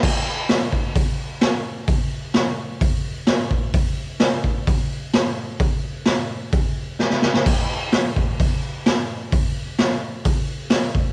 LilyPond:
\new DrumStaff \with { instrumentName = "Drums" } \drummode { \time 4/4 \tempo 4 = 129 <cymc bd>4 <hho sn>8 bd8 <hho bd>4 <hho sn>4 | <hho bd>4 <hho sn>4 <hho bd>4 <hho sn>8 bd8 | <hho bd>4 <hho sn>8 bd8 <hho bd>4 <hho sn>4 | <hho bd>4 <hho sn>4 <hho bd>4 sn16 sn16 sn16 sn16 |
<cymc hho bd>4 <hho sn>8 bd8 <hho bd>4 <hho sn>4 | <hho bd>4 <hho sn>4 <hho bd>4 <hho sn>8 bd8 | }